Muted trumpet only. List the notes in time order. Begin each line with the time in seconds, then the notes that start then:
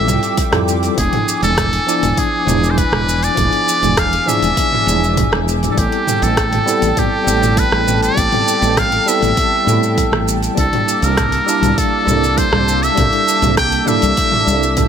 Already playing: E5
0.98 G#4
1.43 A4
2.19 G#4
2.70 C5
2.78 B4
3.24 D5
3.99 F5
4.28 E5
5.71 A4
5.79 G4
6.23 A4
6.99 G4
7.59 B4
8.03 D5
8.78 F5
9.08 E5
10.59 A4
11.04 A#4
11.78 A4
12.38 C5
12.83 E5
13.58 G5
13.88 E5